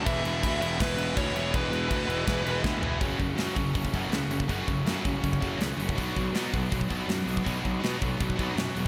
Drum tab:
CC |x-x-x-x-x-x-x-x-|x-x-x-x-x-x-----|----------------|----------------|
HH |----------------|----------------|o-o-o-o-o-o-o-o-|o-o-o-o-o-o-o-o-|
SD |--------o-------|--------o---o---|----o-------o---|----o-------o---|
FT |----------------|--------------o-|----------------|----------------|
BD |o---o---o---o---|o---o---o---o---|o-o---o-ooo----o|o-o---o-ooo----o|

CC |----------------|----------------|
HH |o-o-o-o-o-o-o-o-|o-o-o-o-o-o-o-o-|
SD |----o-------o---|----o-------o---|
FT |----------------|----------------|
BD |o-o---o-ooo----o|o-o---o-ooo-----|